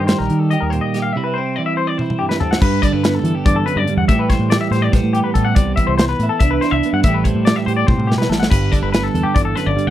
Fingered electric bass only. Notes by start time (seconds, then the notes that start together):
Already playing: G2
0.20 A#1
0.30 D#3
0.62 D#2
2.62 G2
2.93 G2
3.24 E3
3.46 G2
3.76 G2
3.97 E2
4.09 A2
4.39 A2
4.71 A2
4.93 A2
5.03 A2
5.36 A2
5.56 C2
5.88 C2
6.19 A2
6.41 C2
6.72 C2
6.93 G2
7.04 A1
7.35 A2
7.67 A2
7.88 A2
7.97 A2
8.30 A1
8.52 G1
8.82 G1
9.14 E2
9.36 G1
9.67 G1